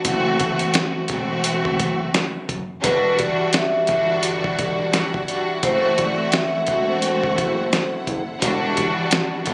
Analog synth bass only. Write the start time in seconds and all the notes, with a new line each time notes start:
0.05 F#1
0.41 F#1
1.10 E1
1.80 F#1
2.49 F#1
2.84 E1
3.89 G1
4.59 E1
5.63 F#1
5.99 F#1
6.68 E1
7.38 F#1
8.07 F#1
8.42 E1
9.47 G1